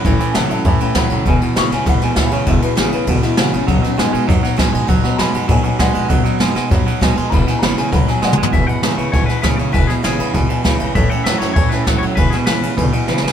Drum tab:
RD |x--x--x--x--x--x--x--x--|x--x--x--x--x--x--x--x--|x--x--x--x--x--x--x--x--|x--x--x--x--x--x--x--x--|
SD |---o--o-----------o-----|------o--o--o--o--o-----|------o--------o--o-----|---o--o-----o--o--o-----|
T2 |------------------------|------------------------|------------------------|------------------------|
FT |------------------------|------------------------|------------------------|------------------------|
BD |o-----------o-----o-----|o-----------o-----o-----|o-----------o-----------|o-----------o-----o-----|

RD |x--x--x--x--x--x--x--x--|x--x--x--x--x--x--x--x--|x--x--x--x--x--x--------|x--x--x--x--x--x--x--x--|
SD |---o--o-----------o-----|---o--o--o--o--o--o-----|---o--o--o--o--o--o-----|------o-----o--o--o-----|
T2 |------------------------|------------------------|--------------------o---|------------------------|
FT |------------------------|------------------------|----------------------o-|------------------------|
BD |o-----------o-----o-----|o-----------o-----o-----|o-----------o-----------|o-----------o-----o-----|

RD |x--x--x--x--x--x--x--x--|x--x--x--x--x--x--x--x--|x--x--x--x--x--x--------|
SD |---o--o-----o-----o-----|------o--o-----o--o-----|---o--o-----o-----o-o-o-|
T2 |------------------------|------------------------|------------------------|
FT |------------------------|------------------------|------------------------|
BD |o-----------o-----o-----|o-----------o-----o-----|o-----------o-----------|